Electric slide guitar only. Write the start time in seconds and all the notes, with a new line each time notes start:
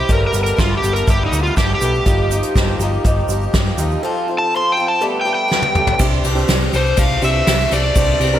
0.12 A#4
0.27 A#4
0.44 A#4
0.59 F4
0.77 G4
0.93 A#4
1.10 G4
1.26 D#4
1.43 F4
1.57 G4
1.75 G4
4.38 A5
4.57 C6
4.72 G5
4.88 A5
5.21 G5
5.35 G5
6.76 C5
6.99 F5
7.24 E5
7.73 D5